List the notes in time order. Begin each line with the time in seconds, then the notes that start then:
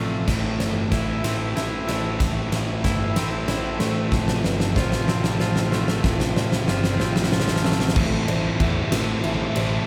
Already playing: A1 F2 A2 C3 F3 A3 C4 F4 A4 D5 A5
0.27 A1 A2 E3 A3 C4 E4, kick, snare, crash
0.60 G1 C5, snare, ride
0.92 A1 A2 E3 A3 E4 E5, kick, snare, ride
1.23 A1 A2 E3 A3 C4, snare, ride
1.56 A1 E4 E5, snare, ride
1.87 A2 E3 A3 C5, snare, ride
2.19 A1 A2 E3 A3 B5, kick, snare, ride
2.52 A1 E5, snare, ride
2.83 G1 A2 E3 A3 E4 E5, kick, snare, ride
3.16 A1 A2 E3 A3 C4, snare, ride
3.48 A1 E4 C5, snare, ride
3.79 A1 A2 E3 A3 C5, snare, ride
4.12 A1 F2 A2 C3 F3 F4 A4 A5, kick, snare
4.28 snare
4.44 G1 B4, snare
4.60 snare
4.76 A1 F2 C3 F3 F4 C5, kick, snare
4.92 snare
5.07 A1 F2 C3 F3 C4, snare
5.24 snare
5.40 A1 F4 C5, snare
5.56 snare
5.71 F2 C3 F3 A3 A4, snare
5.88 snare
6.03 A1 F2 A2 C3 F3, kick, snare
6.20 snare
6.36 A1 C5, snare
6.52 snare
6.67 G1 F2 C3 F3 F4 C5, snare
6.84 snare
6.99 A1 F2 C3 F3 C4, snare
7.16 snare
7.24 snare
7.31 A1 F4 A4, snare
7.40 snare
7.48 snare
7.56 snare
7.63 A1 F2 C3 F3 A3 A4, snare
7.72 snare
7.80 snare
7.88 snare
7.95 A1 A2 E3 A3 C4 E4 A4 C5 A5, kick, crash
8.27 A1 A3 C4 E4 C5, ride
8.59 E2 E3 A3 C4 E4 E5, kick, ride
8.91 A1 A2 E3 A3 C4 E4, snare, ride
9.24 A1 E3 A3 C4 E4 E5, ride
9.54 A1 A3 C4 E4 C5, ride